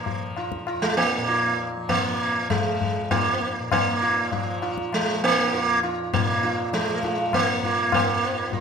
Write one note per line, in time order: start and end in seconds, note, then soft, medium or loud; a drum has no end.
0.00 0.56 F2 medium
0.00 1.17 A#2 medium
0.00 1.77 F3 medium
0.00 0.33 A#3 medium
0.06 tabla tin medium
0.06 tabla ge medium
0.36 0.66 F4 soft
0.36 tabla na soft
0.52 tabla ke medium
0.57 2.98 F2 medium
0.67 0.96 F4 soft
0.67 tabla na medium
0.82 0.97 G#3 medium
0.97 1.70 A#3 medium
1.17 3.58 A#2 medium
1.28 1.57 F4 soft
1.28 tabla tin medium
1.77 2.38 F3 medium
1.89 2.50 A#3 medium
1.89 2.18 F4 soft
1.89 tabla na medium
1.89 tabla ge medium
2.38 4.33 F3 medium
2.50 3.11 G#3 medium
2.50 tabla na medium
2.50 tabla ge medium
2.81 tabla ge medium
2.98 5.52 F2 soft
3.11 3.71 A#3 medium
3.11 3.39 F4 soft
3.11 tabla na medium
3.11 tabla ge medium
3.41 tabla te medium
3.58 3.73 A#2 medium
3.72 6.12 A#2 medium
3.72 4.59 A#3 medium
3.72 tabla na loud
3.72 tabla ge medium
4.02 4.30 F4 soft
4.32 4.92 F3 medium
4.32 4.60 F4 soft
4.32 tabla tin medium
4.32 tabla ge medium
4.62 4.90 F4 soft
4.62 tabla na medium
4.78 tabla ke medium
4.92 6.72 F3 medium
4.92 5.23 G#3 medium
4.92 tabla na medium
5.24 5.79 A#3 medium
5.52 7.89 F2 medium
5.52 5.81 F4 soft
5.52 tabla tin medium
5.83 6.11 F4 soft
5.83 tabla na medium
6.12 8.49 A#2 medium
6.12 6.69 A#3 medium
6.12 tabla na medium
6.12 tabla ge medium
6.43 6.71 F4 soft
6.43 tabla te medium
6.72 7.31 F3 medium
6.72 7.34 G#3 medium
6.72 tabla te medium
6.88 tabla te medium
7.03 7.32 F4 soft
7.03 tabla ke medium
7.18 tabla te medium
7.31 8.60 F3 medium
7.31 7.93 A#3 medium
7.31 tabla na medium
7.31 tabla ge medium
7.63 7.92 F4 soft
7.63 tabla ge medium
7.90 8.60 F2 medium
7.90 tabla na loud
7.90 tabla ge medium
7.94 8.60 A#3 medium
8.23 8.51 F4 soft
8.50 8.60 A#2 medium
8.50 8.60 F4 soft
8.50 tabla tin medium
8.50 tabla ge medium